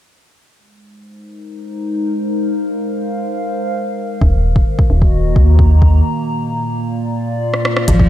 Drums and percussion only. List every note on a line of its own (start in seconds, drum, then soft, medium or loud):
4.21 kick loud
4.56 kick loud
4.79 kick loud
5.02 kick loud
5.36 kick loud
5.59 kick loud
5.82 kick loud
7.54 cross-stick soft
7.65 cross-stick medium
7.77 cross-stick medium
7.88 kick loud
7.88 closed hi-hat medium
7.99 kick loud